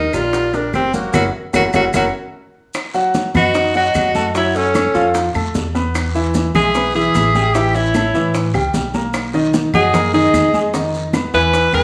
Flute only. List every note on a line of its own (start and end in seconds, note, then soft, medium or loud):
0.00 0.14 A#4 medium
0.13 0.55 D5 medium
0.53 0.73 A#4 medium
0.73 0.92 G4 medium
0.94 1.13 F#4 medium
1.14 1.27 A#4 medium
1.55 1.67 A#4 loud
1.75 1.87 A#4 medium
1.94 2.07 A#4 medium
3.36 3.73 D#5 medium
3.75 4.31 D#5 loud
4.35 4.57 C#5 medium
4.55 5.15 A4 medium
6.55 6.92 E5 medium
6.94 7.55 E5 medium
7.55 7.76 E5 medium
7.75 8.35 C#5 medium
9.75 10.12 D#5 medium
10.15 10.70 D#5 medium
11.34 11.71 G#5 medium
11.73 11.84 G#5 medium